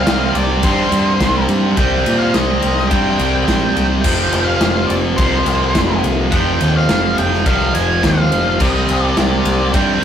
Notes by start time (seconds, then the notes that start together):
Already playing: C3 G3 C4 F5
0.07 C2, snare, ride
0.34 C2 D5, ride
0.63 G2 C3 G3 C4 C5, kick, ride
0.92 G2, ride
1.20 C2, kick, snare, ride
1.49 G2, ride
1.76 C2 C3 G3 C4 G5, kick, ride
2.06 A#2, ride
2.19 F5
2.34 C2 D#5, snare, ride
2.62 C2, ride
2.77 snare
2.88 G2 C3 G3 G5, kick, ride
2.92 C4
3.19 C2, ride
3.45 A#1 G5, kick, snare, ride
3.75 C2, ride
4.01 F1 F2 C3 G5, kick, crash
4.06 F3
4.32 F1, ride
4.45 F5
4.60 F1, snare, ride
4.87 F1 D5, ride
5.17 C2 F2 C3 F3 C5, kick, ride
5.46 C2, ride
5.75 F1, kick, snare, ride
6.04 C2, ride
6.30 F1 F2 C3 F3 G5, kick, ride
6.61 D#2, ride
6.76 F5
6.89 F1, snare, ride
7.18 F1 G5, ride
7.32 snare
7.45 C2 F2 C3 F3 F5, kick, ride
7.75 F1 G#5, ride
8.03 D#2 F5, kick, snare, ride
8.32 F1, ride
8.59 C2 C3 G3 C4 D#5, kick, crash
8.89 C2, ride
9.04 D5
9.17 C2 D5, snare, ride
9.45 C2, ride
9.72 G2 C3 G3 C4 G5, kick, ride